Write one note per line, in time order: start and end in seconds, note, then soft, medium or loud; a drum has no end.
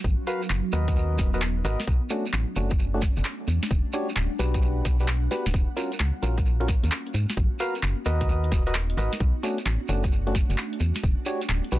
0.00 1.84 F#3 medium
0.00 1.86 B3 medium
0.00 1.86 D#4 medium
0.00 3.44 F#4 medium
0.04 0.16 G#1 loud
0.04 kick loud
0.04 shekere soft
0.27 0.42 F#4 medium
0.27 0.42 A#4 medium
0.27 0.42 B4 medium
0.27 0.42 F5 loud
0.27 closed hi-hat loud
0.27 shekere medium
0.42 shekere medium
0.50 0.61 F#1 medium
0.50 clap loud
0.72 1.20 D#2 medium
0.72 1.30 F#4 medium
0.72 1.30 A#4 medium
0.72 1.30 B4 medium
0.72 1.30 D#5 medium
0.72 closed hi-hat loud
0.72 shekere medium
0.88 kick loud
0.88 closed hi-hat medium
0.88 shekere soft
0.96 shekere soft
1.18 1.62 D#1 loud
1.18 kick loud
1.18 snare medium
1.18 closed hi-hat loud
1.18 shekere medium
1.34 1.42 F#4 medium
1.34 1.42 A#4 medium
1.34 1.42 B4 medium
1.34 1.42 D#5 medium
1.34 shekere medium
1.42 clap loud
1.42 shekere soft
1.65 1.76 G#1 medium
1.65 1.79 F#4 medium
1.65 1.79 A#4 medium
1.65 1.79 B4 medium
1.65 1.79 D#5 loud
1.65 snare soft
1.65 closed hi-hat loud
1.65 shekere medium
1.80 snare medium
1.80 shekere soft
1.87 1.99 B1 medium
1.87 3.46 A3 medium
1.87 3.46 C#4 medium
1.87 5.50 D4 medium
1.87 kick loud
1.87 shekere soft
2.10 2.25 A3 medium
2.10 2.25 C#4 medium
2.10 2.25 D4 medium
2.10 2.25 F#4 medium
2.10 closed hi-hat loud
2.10 shekere medium
2.26 shekere soft
2.33 2.45 A1 medium
2.33 clap loud
2.33 shekere soft
2.56 3.11 F#1 medium
2.56 2.71 A3 medium
2.56 2.71 C#4 medium
2.56 2.71 D4 medium
2.56 2.71 F#4 medium
2.56 closed hi-hat loud
2.56 shekere medium
2.70 kick loud
2.70 shekere medium
2.79 shekere soft
2.94 3.02 A3 medium
2.94 3.02 C#4 medium
2.94 3.02 D4 medium
2.94 3.02 F#4 loud
3.02 kick loud
3.02 snare soft
3.02 closed hi-hat medium
3.02 shekere medium
3.16 3.23 F#1 medium
3.16 shekere medium
3.25 clap loud
3.25 shekere soft
3.48 3.59 E2 medium
3.48 5.52 G3 medium
3.48 5.52 B3 medium
3.48 5.52 F#5 medium
3.48 closed hi-hat loud
3.48 shekere medium
3.63 snare medium
3.63 shekere medium
3.71 3.82 E1 medium
3.71 kick loud
3.71 shekere soft
3.93 4.08 D4 medium
3.93 4.08 F#4 medium
3.93 4.08 G4 medium
3.93 4.08 C#5 medium
3.93 closed hi-hat loud
3.93 shekere medium
4.09 shekere medium
4.16 4.28 D1 medium
4.16 clap loud
4.16 shekere soft
4.39 4.82 B1 medium
4.39 4.97 D4 medium
4.39 4.97 F#4 medium
4.39 4.97 G4 medium
4.39 4.97 B4 medium
4.39 closed hi-hat loud
4.39 shekere medium
4.54 kick loud
4.54 closed hi-hat medium
4.54 shekere medium
4.62 shekere soft
4.85 5.28 B1 loud
4.85 kick loud
4.85 snare soft
4.85 closed hi-hat loud
4.85 shekere medium
4.99 5.08 D4 medium
4.99 5.08 F#4 medium
4.99 5.08 G4 medium
4.99 5.08 B4 medium
4.99 shekere soft
5.08 clap loud
5.08 shekere soft
5.31 5.46 D4 medium
5.31 5.46 F#4 medium
5.31 5.46 G4 medium
5.31 5.46 B4 loud
5.31 snare soft
5.31 closed hi-hat loud
5.31 shekere medium
5.46 5.52 D1 medium
5.46 snare medium
5.46 shekere medium
5.54 5.65 D#1 loud
5.54 7.13 A#3 medium
5.54 7.13 C#4 medium
5.54 7.13 F4 medium
5.54 7.13 F#4 medium
5.54 kick loud
5.54 shekere soft
5.77 5.91 C#4 medium
5.77 5.91 F4 medium
5.77 5.91 F#4 medium
5.77 5.91 A#4 medium
5.77 closed hi-hat loud
5.77 shekere medium
5.92 closed hi-hat medium
5.92 shekere medium
6.00 6.11 C#2 medium
6.00 clap loud
6.22 6.78 A#1 medium
6.22 6.37 C#4 medium
6.22 6.37 F4 medium
6.22 6.37 F#4 medium
6.22 6.37 A#4 medium
6.22 closed hi-hat loud
6.22 shekere medium
6.38 kick loud
6.38 closed hi-hat medium
6.38 shekere soft
6.46 shekere soft
6.60 6.68 C#4 medium
6.60 6.68 F4 medium
6.60 6.68 F#4 medium
6.60 6.68 A#4 loud
6.60 closed hi-hat soft
6.68 kick loud
6.68 snare soft
6.68 closed hi-hat loud
6.68 shekere medium
6.83 6.89 D#2 medium
6.83 closed hi-hat medium
6.83 shekere medium
6.92 clap loud
6.92 shekere soft
7.07 closed hi-hat medium
7.14 7.26 G#2 medium
7.14 9.18 B3 medium
7.14 9.18 D#4 medium
7.14 9.18 F#4 medium
7.14 closed hi-hat loud
7.14 shekere medium
7.29 snare medium
7.29 closed hi-hat medium
7.29 shekere medium
7.37 7.49 G#1 medium
7.37 kick loud
7.37 shekere soft
7.59 7.75 F#4 medium
7.59 7.75 A#4 medium
7.59 7.75 B4 medium
7.59 7.75 F5 loud
7.59 closed hi-hat loud
7.59 shekere medium
7.75 closed hi-hat medium
7.75 shekere medium
7.83 7.94 F#1 medium
7.83 clap loud
7.83 shekere soft
8.05 8.53 D#2 medium
8.05 8.63 F#4 medium
8.05 8.63 A#4 medium
8.05 8.63 B4 medium
8.05 8.63 D#5 medium
8.05 closed hi-hat loud
8.05 shekere medium
8.21 kick medium
8.21 closed hi-hat medium
8.21 shekere soft
8.29 shekere soft
8.44 closed hi-hat soft
8.52 8.95 D#1 loud
8.52 kick loud
8.52 snare soft
8.52 closed hi-hat loud
8.52 shekere medium
8.66 8.74 F#4 medium
8.66 8.74 A#4 medium
8.66 8.74 B4 medium
8.66 8.74 D#5 medium
8.66 closed hi-hat medium
8.66 shekere soft
8.74 clap loud
8.74 shekere soft
8.90 closed hi-hat medium
8.97 9.09 G#1 medium
8.97 9.12 F#4 medium
8.97 9.12 A#4 medium
8.97 9.12 B4 medium
8.97 9.12 D#5 loud
8.97 snare soft
8.97 closed hi-hat loud
8.97 shekere medium
9.12 snare medium
9.12 closed hi-hat medium
9.12 shekere medium
9.20 9.32 B1 loud
9.20 10.79 A3 medium
9.20 10.79 C#4 medium
9.20 11.79 D4 medium
9.20 10.79 F#4 medium
9.20 kick loud
9.20 shekere soft
9.43 9.58 A3 medium
9.43 9.58 C#4 medium
9.43 9.58 D4 medium
9.43 9.58 F#4 medium
9.43 closed hi-hat loud
9.43 shekere medium
9.58 closed hi-hat medium
9.58 shekere medium
9.66 9.78 A1 medium
9.66 clap loud
9.66 shekere soft
9.88 10.44 F#1 medium
9.88 10.04 A3 medium
9.88 10.04 C#4 medium
9.88 10.04 D4 medium
9.88 10.04 F#4 medium
9.88 closed hi-hat loud
9.88 shekere medium
10.04 kick loud
10.04 closed hi-hat medium
10.04 shekere soft
10.12 shekere soft
10.27 10.35 A3 medium
10.27 10.35 C#4 medium
10.27 10.35 D4 medium
10.27 10.34 F#4 loud
10.27 closed hi-hat soft
10.35 kick loud
10.35 snare soft
10.35 closed hi-hat loud
10.35 shekere medium
10.49 10.56 F#1 medium
10.49 closed hi-hat medium
10.49 shekere soft
10.58 clap loud
10.58 shekere soft
10.73 closed hi-hat medium
10.80 10.92 E2 medium
10.80 11.79 G3 medium
10.80 11.79 B3 medium
10.80 11.79 F#5 medium
10.80 closed hi-hat loud
10.80 shekere medium
10.95 snare medium
10.95 closed hi-hat medium
10.95 shekere soft
11.03 11.15 E1 medium
11.03 kick loud
11.03 shekere soft
11.26 11.41 D4 medium
11.26 11.41 F#4 medium
11.26 11.41 G4 medium
11.26 11.41 C#5 loud
11.26 closed hi-hat loud
11.26 shekere medium
11.42 closed hi-hat medium
11.42 shekere soft
11.49 11.61 D1 medium
11.49 clap loud
11.49 shekere soft
11.64 closed hi-hat soft
11.72 11.79 B1 medium
11.72 11.79 D4 medium
11.72 11.79 F#4 medium
11.72 11.79 G4 medium
11.72 11.79 B4 medium
11.72 closed hi-hat loud
11.72 shekere medium